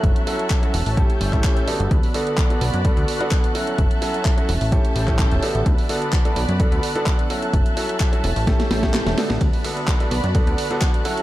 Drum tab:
RD |----------------|----------------|----------------|----------------|
HH |xxoxxxooxxoxxxox|xooxxxoxxxoxxxox|xxoxxxooxxoxxxox|xooxxxoxxxoxxxox|
CP |----x------xx---|----x-------x---|----x------xx---|----x-------x---|
SD |----------------|----------------|----------------|----------------|
BD |o---o---o--oo---|o---o---o---o---|o---o---o--oo---|o---o---o---o---|

RD |----------------|x---x-x-x-x-x-xx|
HH |xxoxxxooxxoxxxox|xooxxxoxxxoxxxox|
CP |----x-------x---|----x-------x---|
SD |--------oooooooo|----oo-o---oo---|
BD |o---o---o--o----|o---o---o---o---|